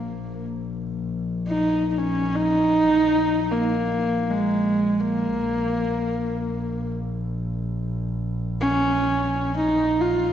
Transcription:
Already playing: double bass A#1, horsehead fiddle A#3
1.48 horsehead fiddle D#4
1.90 horsehead fiddle D#4
1.98 horsehead fiddle C#4
2.35 horsehead fiddle D#4
3.52 horsehead fiddle A#3
4.31 horsehead fiddle G#3
5.00 horsehead fiddle A#3
5.36 double bass A#1
8.61 horsehead fiddle C#4
9.57 horsehead fiddle D#4
10.01 horsehead fiddle F4

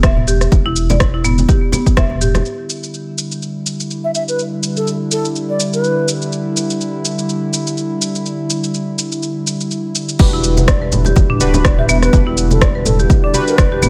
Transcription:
Already playing: analog synth bass D1
0.03 marimba E5, kick, cross-stick, shaker
0.17 mid tom, high conga
0.28 analog synth bass E1, marimba G4, shaker
0.41 cross-stick, shaker
0.52 analog synth bass E1, kick, shaker
0.66 marimba E4, high conga
0.76 shaker
0.90 marimba D5, high conga, low conga, shaker
1.00 kick, cross-stick, shaker
1.14 marimba E4
1.24 marimba B3, mid tom, high conga, shaker
1.38 high conga, shaker
1.49 marimba G4, kick, shaker
1.72 marimba B3, high conga, low conga, shaker
1.86 kick, shaker
1.97 analog synth bass E1, marimba E5, kick, cross-stick, low conga, shaker
2.10 high conga
2.21 marimba G4, mid tom, shaker
2.35 cross-stick, low conga, shaker
2.45 analog synth pad D3 G3 E4, shaker
2.70 shaker
2.83 shaker
2.94 shaker
3.18 shaker
3.32 shaker
3.42 shaker
3.66 shaker
3.80 shaker
3.91 shaker
4.04 bansuri E5
4.15 bansuri E5, shaker
4.28 bansuri B4, shaker
4.39 shaker
4.63 shaker
4.77 bansuri A4, shaker
4.87 shaker
5.11 bansuri A4, shaker
5.25 shaker
5.36 shaker
5.49 bansuri D5
5.60 shaker
5.73 bansuri B4, shaker
5.84 shaker
6.08 shaker
6.22 shaker
6.32 shaker
6.57 shaker
6.70 shaker
6.81 shaker
7.05 shaker
7.19 shaker
7.29 shaker
7.53 shaker
7.67 shaker
7.77 shaker
8.02 shaker
8.15 shaker
8.26 shaker
8.50 shaker
8.64 shaker
8.74 shaker
8.98 shaker
9.12 shaker
9.23 shaker
9.47 shaker
9.61 shaker
9.71 shaker
9.95 shaker
10.09 shaker
10.19 analog synth bass E1, analog synth pad D3 G3 E4, synth keys D4 F#4 G4 B4, kick, crash, shaker
10.33 marimba E4
10.44 shaker
10.57 high conga, shaker
10.68 marimba D5, kick, cross-stick, shaker
10.82 marimba B4
10.92 mid tom, high conga, low conga, shaker
11.05 marimba G4, low conga, shaker
11.16 analog synth bass E1, kick, high conga, low conga, shaker
11.30 marimba D4, mid tom
11.40 analog synth bass D1, synth keys D4 F#4 G4 B4, high conga, shaker
11.54 low conga, shaker
11.65 marimba D5, kick, cross-stick, shaker
11.78 marimba G4, bansuri E5, mid tom
11.89 analog synth bass E1, marimba B3, bansuri E5, high conga, shaker
12.02 bansuri B4, cross-stick, shaker
12.13 analog synth bass E1, synth keys D4 F#4 G4 B4, kick, shaker
12.27 marimba E4
12.37 shaker
12.51 bansuri A4, high conga, shaker
12.61 marimba D5, kick, cross-stick, shaker
12.75 marimba B4
12.85 bansuri A4, mid tom, high conga, low conga, shaker
12.99 marimba G4, shaker
13.10 kick, high conga, shaker
13.23 marimba D4, bansuri D5
13.34 synth keys D4 F#4 G4 B4, high conga, shaker
13.48 bansuri B4, shaker
13.58 analog synth bass E1, marimba D5, kick, cross-stick, shaker
13.72 marimba G4
13.82 marimba B3, mid tom, low conga, shaker

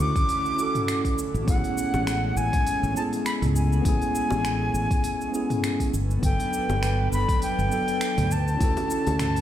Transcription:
Already playing: analog synth pad D3 A3 C#4 E4 F#4, tine electric piano C#4 E4 F#4 A4
0.00 fingered electric bass D2, flute D6
0.16 kick, open hi-hat, shaker
0.29 open hi-hat, shaker
0.46 shaker
0.55 tine electric piano C#4 E4, shaker
0.60 tine electric piano F#4 A4
0.75 mid tom, open hi-hat, shaker
0.88 finger snap, open hi-hat, shaker
1.05 kick, open hi-hat, shaker
1.18 shaker
1.34 fingered electric bass A1, shaker
1.44 fingered electric bass A1, analog synth pad G#3, tine electric piano B3 C#4, kick, open hi-hat, shaker
1.49 tine electric piano E4 G#4, flute F#5
1.64 open hi-hat, shaker
1.78 shaker
1.94 fingered electric bass A1, high bongo, shaker
2.07 finger snap, open hi-hat, shaker
2.37 fingered electric bass A1, flute G#5, shaker
2.53 kick, open hi-hat, shaker
2.67 open hi-hat, shaker
2.83 fingered electric bass A1, shaker
2.93 tine electric piano B3 C#4
2.97 tine electric piano E4 G#4, flute A5, shaker
3.13 open hi-hat, shaker
3.26 flute B5, finger snap, open hi-hat, shaker
3.42 fingered electric bass C#2, mid tom, open hi-hat, shaker
3.56 flute G#5, shaker
3.73 shaker
3.81 fingered electric bass A1, tine electric piano B3 C#4, kick, open hi-hat
3.86 tine electric piano E4 G#4, shaker
4.02 open hi-hat, shaker
4.15 shaker
4.30 fingered electric bass A1, high bongo, shaker
4.45 finger snap, open hi-hat, shaker
4.74 fingered electric bass A1, shaker
4.91 kick, open hi-hat, shaker
5.04 open hi-hat, shaker
5.21 shaker
5.32 tine electric piano B3 C#4 E4 G#4, shaker
5.50 mid tom, open hi-hat, shaker
5.64 finger snap, open hi-hat, shaker
5.80 kick, open hi-hat, shaker
5.93 fingered electric bass G1, analog synth pad F#3 D4 A4 B4, shaker
6.11 shaker
6.19 fingered electric bass G1, tine electric piano B3 D4, kick
6.23 tine electric piano F#3 A4, flute G5, open hi-hat, shaker
6.40 open hi-hat, shaker
6.53 shaker
6.69 fingered electric bass G1, high bongo, shaker
6.83 finger snap, open hi-hat, shaker
7.12 fingered electric bass G1, flute B5, shaker
7.29 kick, open hi-hat, shaker
7.42 flute G5, open hi-hat, shaker
7.59 fingered electric bass G1, shaker
7.69 tine electric piano F#3 B3 D4 A4, shaker
7.88 open hi-hat, shaker
8.01 finger snap, open hi-hat, shaker
8.18 fingered electric bass D2, mid tom, open hi-hat, shaker
8.31 analog synth pad D3 A3 C#4 E4, flute A5, shaker
8.48 shaker
8.57 fingered electric bass D2, tine electric piano C#4 E4, kick, open hi-hat
8.61 tine electric piano F#4 A4, shaker
8.77 open hi-hat, high bongo, shaker
8.90 shaker
9.07 fingered electric bass D2, open hi-hat, high bongo, shaker
9.19 finger snap, mid tom, open hi-hat, shaker
9.36 open hi-hat, shaker

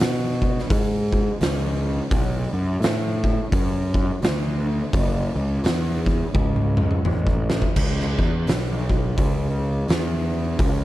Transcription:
0.00 picked electric bass B2, snare
0.42 kick
0.59 snare
0.70 picked electric bass G#2, kick, open hi-hat
1.12 kick
1.41 picked electric bass C#2, snare, open hi-hat
2.11 picked electric bass B1, kick, open hi-hat
2.53 picked electric bass F#2
2.81 picked electric bass A2, snare, open hi-hat
3.24 kick
3.52 picked electric bass F#2, kick, open hi-hat
3.94 kick
4.22 picked electric bass D2, snare, open hi-hat
4.93 picked electric bass F#1, kick, open hi-hat
5.36 picked electric bass C#2
5.64 picked electric bass E2, snare, open hi-hat
6.06 kick
6.34 picked electric bass C#2, kick, high tom
6.56 high tom
6.77 mid tom
6.91 mid tom
7.04 picked electric bass A1, mid tom
7.27 kick
7.50 snare
7.62 kick
7.76 picked electric bass C#2, kick, crash
8.00 snare
8.18 picked electric bass E2, kick
8.47 picked electric bass B1, snare, open hi-hat
8.89 kick
9.18 picked electric bass C#2, kick, open hi-hat
9.88 picked electric bass E2, snare, open hi-hat
10.59 picked electric bass C#2, kick, open hi-hat

